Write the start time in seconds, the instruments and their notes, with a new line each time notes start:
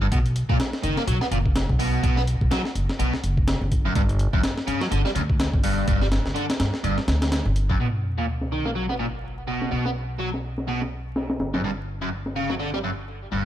0.01 overdriven electric guitar G2
0.12 upright bass B1, overdriven electric guitar B2, kick, closed hi-hat
0.26 closed hi-hat
0.36 closed hi-hat
0.49 upright bass B1, overdriven electric guitar A#2, kick
0.60 snare, closed hi-hat
0.73 snare
0.84 upright bass F#1, overdriven electric guitar D#3, closed hi-hat
0.97 overdriven electric guitar A#3, snare
1.07 upright bass B1, overdriven electric guitar F#3, closed hi-hat
1.21 overdriven electric guitar B3, snare
1.31 upright bass F#1, overdriven electric guitar A#2, closed hi-hat
1.46 kick
1.56 snare, closed hi-hat
1.69 upright bass B1, kick
1.80 overdriven electric guitar B2, open hi-hat
2.03 upright bass B1, overdriven electric guitar B2, kick, closed hi-hat
2.17 overdriven electric guitar B3, snare
2.27 closed hi-hat
2.41 upright bass B1, kick
2.51 overdriven electric guitar F#3, snare, closed hi-hat
2.65 snare
2.75 upright bass F#1, closed hi-hat
2.89 snare
2.99 upright bass B1, overdriven electric guitar B2, closed hi-hat
3.13 snare
3.24 upright bass F#1, closed hi-hat
3.37 kick
3.48 snare, closed hi-hat
3.61 upright bass G1
3.72 kick, closed hi-hat
3.86 overdriven electric guitar F#2
3.95 upright bass G1, overdriven electric guitar G2, kick, closed hi-hat
4.09 closed hi-hat
4.19 closed hi-hat
4.33 upright bass G1, overdriven electric guitar F#2, kick
4.44 snare, closed hi-hat
4.58 snare
4.67 upright bass G2, overdriven electric guitar C#3, closed hi-hat
4.81 overdriven electric guitar F#3, snare
4.91 upright bass G1, overdriven electric guitar D3, closed hi-hat
5.05 overdriven electric guitar G3, snare
5.15 upright bass D2, overdriven electric guitar F#2, closed hi-hat
5.30 kick
5.40 snare, closed hi-hat
5.53 upright bass G1, kick
5.64 overdriven electric guitar G2, open hi-hat
5.88 upright bass G1, overdriven electric guitar G2, kick, closed hi-hat
6.02 overdriven electric guitar G3, snare
6.12 snare, closed hi-hat
6.26 upright bass G1, snare
6.36 overdriven electric guitar D3, closed hi-hat
6.50 snare, closed hi-hat
6.60 upright bass G2, snare, closed hi-hat
6.74 snare
6.84 upright bass G1, overdriven electric guitar G2, closed hi-hat
6.98 snare
7.07 upright bass D2, snare, closed hi-hat
7.22 snare, closed hi-hat
7.32 snare, closed hi-hat
7.45 upright bass G1
7.56 closed hi-hat
7.69 overdriven electric guitar F#2, kick
7.80 upright bass B1, overdriven electric guitar B2, closed hi-hat, sub drop
7.94 closed hi-hat
8.04 closed hi-hat
8.18 overdriven electric guitar A#2
8.28 closed hi-hat
8.41 snare
8.52 overdriven electric guitar D#3, closed hi-hat
8.65 overdriven electric guitar A#3, snare
8.75 overdriven electric guitar F#3, closed hi-hat
8.89 overdriven electric guitar B3, snare
8.99 overdriven electric guitar A#2, closed hi-hat
9.24 closed hi-hat
9.48 overdriven electric guitar B2, open hi-hat
9.62 snare
9.72 upright bass B1, overdriven electric guitar B2, closed hi-hat
9.86 overdriven electric guitar B3, snare
9.96 closed hi-hat
10.20 overdriven electric guitar F#3, closed hi-hat
10.34 snare
10.44 closed hi-hat
10.58 snare
10.68 overdriven electric guitar B2, closed hi-hat
10.82 snare
10.92 closed hi-hat
11.16 snare, closed hi-hat
11.30 snare, closed hi-hat
11.39 upright bass G1, snare, closed hi-hat
11.54 overdriven electric guitar F#2, snare
11.64 overdriven electric guitar G2, closed hi-hat
11.78 closed hi-hat
11.88 closed hi-hat
12.02 overdriven electric guitar F#2
12.12 closed hi-hat
12.26 snare
12.36 overdriven electric guitar C#3, closed hi-hat
12.50 overdriven electric guitar F#3, snare
12.60 overdriven electric guitar D3, closed hi-hat
12.74 overdriven electric guitar G3, snare
12.84 overdriven electric guitar F#2, closed hi-hat
13.08 closed hi-hat
13.32 upright bass G1, overdriven electric guitar G2, open hi-hat